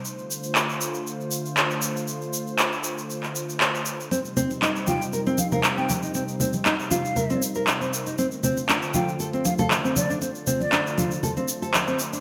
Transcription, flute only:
X:1
M:4/4
L:1/16
Q:"Swing 16ths" 1/4=118
K:Dphr
V:1 name="Flute"
z16 | z16 | z6 g z3 f f z g z2 | z6 f4 z6 |
z6 g z3 f f z2 d z | z3 d3 z8 z2 |]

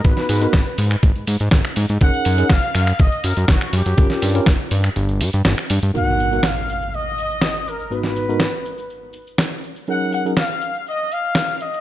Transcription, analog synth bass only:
X:1
M:4/4
L:1/16
Q:1/4=122
K:G#dor
V:1 name="Analog synth bass" clef=bass
G,,, z G,, z G,,, z G,, z G,,, G,, G,, G,, G,,, z G,, G,, | F,,, z F,, z F,,, z F,, z F,,, z F,, F,, F,,, z F,, F,, | =G,,, z =G,, z G,,, z G,, z G,,,2 G,, G,, G,,, z G,, G,, | z16 |
z16 | z16 |]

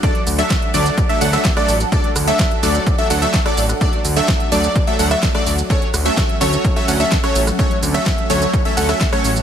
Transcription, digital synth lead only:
X:1
M:4/4
L:1/16
Q:1/4=127
K:D
V:1 name="Digital synth lead"
d2 z e3 d3 e f e2 d2 z | d2 z e3 d3 e f e2 d2 z | d2 z e3 d3 e f e2 d2 z | c2 z e3 c3 e f e2 c2 z |
c2 z e3 c3 e f e2 c2 z |]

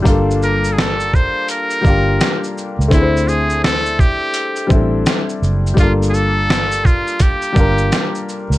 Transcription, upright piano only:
X:1
M:4/4
L:1/8
Q:"Swing 16ths" 1/4=84
K:Gdor
V:1 name="Upright piano"
[G,B,DFA]3 z2 [G,B,DFG]2 z | [A,CDE_Ac]3 z2 [G,CDE=A]2 z | [G,A,B,DFA]3 z2 [G,B,DFB]2 z |]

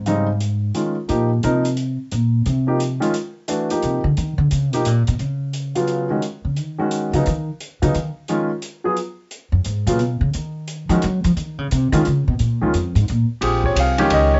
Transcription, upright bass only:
X:1
M:3/4
L:1/8
Q:"Swing" 1/4=175
K:Fm
V:1 name="Upright bass" clef=bass
A,,4 z2 | B,,2 C,3 z | B,,2 C,3 z | z4 C, =D, |
E, =D, _D, _C, B,, C, | [K:C#mix] C,6 | z C, D, z2 C, | D, z2 C, D, z |
z6 | z F,, G,, A,, B,, C, | D,3 E, F, E, | D, C, ^B,, D, C, =B,, |
A,, C,, E,, G,, A,, z | [K:Bbdor] B,,,2 C,,2 D,,2 |]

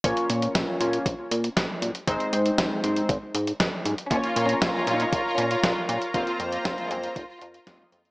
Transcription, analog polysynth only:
X:1
M:4/4
L:1/8
Q:1/4=118
K:Bbm
V:1 name="Analog polysynth"
[B,DFd]3 [B,DFd] z4 | [A,CEc]3 [A,CEc] z4 | [B,DFd]3 [B,DFd] z4 | [B,CFc]3 [B,CFc] z2 [B,CFe]2 |]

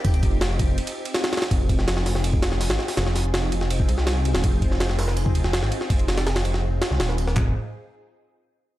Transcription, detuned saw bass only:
X:1
M:4/4
L:1/16
Q:1/4=164
K:Fm
V:1 name="Detuned saw bass" clef=bass
F,,,6 F,,,2 z8 | F,,,6 F,,,6- F,,, A,,, z2 | F,,,6 F,,,4 C,,4 C,, E,,, | F,,,6 F,,,6- F,,, A,,, z2 |
F,,,6 F,,,4 z C,, E,,,4 | F,,,2 z12 z2 |]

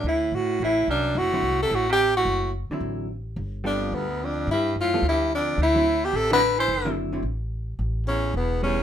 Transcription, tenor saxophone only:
X:1
M:4/4
L:1/8
Q:"Swing" 1/4=217
K:Dmix
V:1 name="Tenor saxophone"
E2 F2 E2 D2 | F3 A F G2 F- | F2 z6 | z2 D2 B,2 D2 |
E2 =F2 E2 D2 | E3 G A B2 c- | c2 z6 | z2 ^C2 B,2 C2 |]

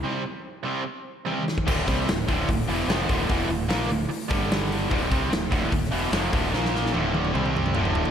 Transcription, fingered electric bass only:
X:1
M:4/4
L:1/8
Q:1/4=148
K:Dm
V:1 name="Fingered electric bass" clef=bass
z8 | D,,, C,, D,,, D,,, D,,, E,,, F,,, D,,, | E,,, D,,, B,,, D,,, z G,,,3 | D,,, C,, D,,, D,,, D,,, E,,, F,,, D,,, |
B,,,2 D,,,2 C,,2 D,,,2 |]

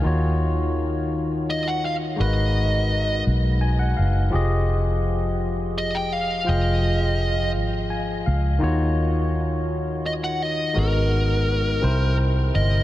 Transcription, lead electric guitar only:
X:1
M:6/8
L:1/16
Q:3/8=56
K:Fphr
V:1 name="Lead electric guitar"
z8 e g f2 | e6 z6 | z8 e =g f2 | e6 z6 |
z8 e g e2 | B8 z2 e2 |]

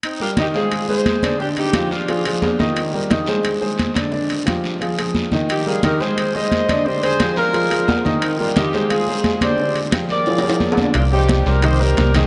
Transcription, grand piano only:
X:1
M:4/4
L:1/8
Q:1/4=176
K:Cm
V:1 name="Grand piano"
z [G,GB] [E,Ee] [A,Ac]2 [A,Ac]2 [D,Dd] | [D,Dd]2 [F,FG]2 [F,FA] [F,FA]2 [E,Ee]- | [E,Ee] [G,GB] [E,Ee] [A,Ac]2 [A,Ac]2 [D,Dd] | [D,Dd]2 [F,FG]2 [F,FA] [F,FA]2 [E,Ee]- |
[E,Ee] [G,GB] [E,Ee] [A,Ac]2 [A,Ac]2 [D,Dd] | [D,Dd]2 [F,FG]2 [F,FA] [F,FA]2 [E,Ee]- | [E,Ee] [G,GB] [E,Ee] [A,Ac]2 [A,Ac]2 [D,Dd] | [D,Dd]2 [F,FG]2 [F,FA] [F,FA]2 [D,Dd] |
z [G,Gc]2 [G,Gc] [E,Ee] [G,Gc]2 [E,Ee] |]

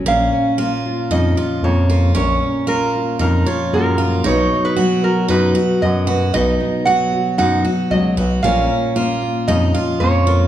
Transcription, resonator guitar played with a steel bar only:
X:1
M:4/4
L:1/16
Q:1/4=114
K:A#phr
V:1 name="Resonator guitar played with a steel bar"
e8 d4 c4 | c4 A4 A2 c2 A4 | c3 B3 A2 B4 d4 | d4 f4 f4 d3 z |
e8 d4 c4 |]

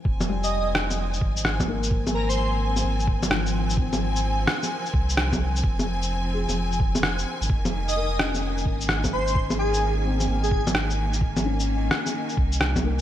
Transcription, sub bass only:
X:1
M:4/4
L:1/16
Q:"Swing 16ths" 1/4=129
K:Fm
V:1 name="Sub bass" clef=bass
F,,,8- F,,,2 A,,,6- | A,,,8 A,,,8- | A,,,6 z4 C,,6 | F,,,6- F,,, F,,,6- F,,, z A,,, |
F,,,8- F,,,2 A,,,6- | A,,,8 A,,,8- | A,,,6 z4 C,,6 |]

